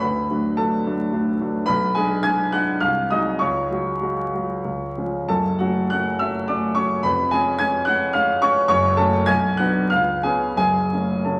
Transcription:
0.00 D2 B4 B5
0.30 F#3 A3 D4
0.57 F#3 A3 D4 A4 A5
0.85 F#3 A3 D4
1.12 F#3 A3 D4
1.41 F#3 A3 D4
1.66 B1 B4 B5
1.95 G#3 D4 G#4 G#5
2.23 G#3 D4 G#5 G#6
2.52 G#3 D4 F#5 F#6
2.80 C2 F5 F6
3.11 F#3 G#3 D#4 D#5 D#6
3.39 C#2 C#5 C#6
3.70 F#3 G#3 F#4
4.01 F#3 G#3 F#4
4.33 F#3 G#3 F#4
4.65 C#2
4.98 F3 G#3 C#4
5.29 F#1 F#2 A4 A5
5.59 F#3 A3 C#4 F#4 F#5
5.90 F#3 A3 C#4 F#5 F#6
6.19 F#3 A3 C#4 E5 E6
6.48 F#3 A3 C#4 D5 D6
6.75 F#3 A3 C#4 C#5 C#6
7.03 F1 F2 B4 B5
7.31 G#3 C#4 G#4 G#5
7.59 G#3 C#4 G#5 G#6
7.85 G#3 C#4 F#5 F#6
8.13 G#3 C#4 F5 F6
8.42 G#3 C#4 C#5 C#6
8.68 F#1 F#2 C#5 C#6
8.97 F#3 A3 C#4 A4 A5
9.26 B1 G#5 G#6
9.57 F#3 B3 D4 F#5 F#6
9.90 C#2 F5 F6
10.23 C#3 B3 C#4 G#4 G#5
10.57 F#1 F#2 G#4 G#5
10.93 C#3 A3 C#4
11.25 C#3 A3 C#4 A4 A5

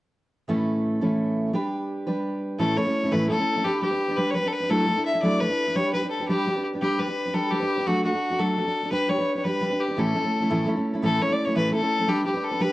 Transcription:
0.48 A2 E3 A3 C#4 E4 A4
1.01 A2 E3 A3 C#4 E4 A4
1.53 G3 D4 G4 B4
2.07 G3 D4 G4 B4
2.59 A2 E3 A3 C#4 E4 A4
2.77 A3 C#4 E4 A4 C#5
2.85 A3 C#4 E4 A4
3.03 A3 C#4 E4 A4
3.11 A2 E3 A3 C#4 E4 A4 B4
3.29 A3 C#4 E4 A4
3.38 A3 C#4 E4 A4
3.56 A3 C#4 E4 A4
3.64 G3 D4 G4 B4
3.82 G3 D4 G4 B4
3.91 D4 G4 B4
4.08 D4 G4 B4
4.17 G3 D4 G4 B4
4.31 G3 B4 C#5
4.35 D4 G4 B4
4.43 D4 G4 B4
4.48 A4
4.53 B4
4.60 D4 G4 B4
4.69 F#3 A3 D4 E4 A4
4.87 A3 D4 E4 A4
4.96 D4 E4 A4
5.06 E5
5.14 D4 E4 A4
5.22 F#3 A3 D4 E4 A4 D5
5.40 A3 D4 E4 A4 B4
5.49 D4 E4 A4
5.67 D4 E4 A4
5.75 G3 D4 G4 B4 C#5
5.93 G3 D4 G4 B4
6.02 D4 G4 B4
6.10 A4
6.20 D4 G4 B4
6.28 G3 D4 G4 B4
6.47 G3 D4 G4 B4
6.55 D4 G4 B4
6.73 D4 G4 B4
6.82 G3 D4 G4 B4
6.99 G3 D4 G4 B4
7.07 D4 G4 B4
7.25 D4 G4 B4
7.34 G3 D4 G4 A4 B4
7.51 G3 D4 G4 B4
7.60 D4 G4 B4
7.77 D4 G4 B4
7.86 F#3 A3 D4 F#4 A4
8.04 A3 D4 F#4 A4
8.13 D4 F#4 A4
8.30 D4 F#4 A4
8.39 F#3 A3 D4 F#4 A4
8.56 A3 D4 F#4 A4
8.65 D4 F#4 A4
8.83 D4 F#4 A4
8.91 G3 D4 G4 B4
9.09 G3 D4 G4 B4 C#5
9.18 D4 G4 B4
9.35 D4 G4 B4 C#5
9.44 G3 D4 G4 B4
9.61 G3 D4 G4 B4
9.70 D4 G4 B4
9.80 G4
9.88 D4 G4 B4
9.97 A2 E3 A3 C#4 E4 A4
10.15 A3 C#4 E4 A4
10.23 A3 C#4 E4 A4
10.40 A3 C#4 E4 A4
10.49 A2 E3 A3 C#4 E4 A4
10.66 A3 C#4 E4 A4
10.75 A3 C#4 E4 A4
10.93 A3 C#4 E4 A4
11.02 A2 E3 A3 C#4 E4 A4
11.20 A3 C#4 E4 A4 C#5
11.29 A3 C#4 E4 A4 D5
11.45 A3 C#4 E4 A4 C#5
11.55 A2 E3 A3 C#4 E4 A4 B4
11.72 A3 C#4 E4 A4
11.81 A3 C#4 E4 A4
11.99 A3 C#4 E4 A4
12.08 G3 D4 G4 B4
12.25 G3 D4 G4 B4
12.34 D4 G4 B4
12.44 A4
12.51 D4 G4 B4
12.60 G3 D4 G4 B4

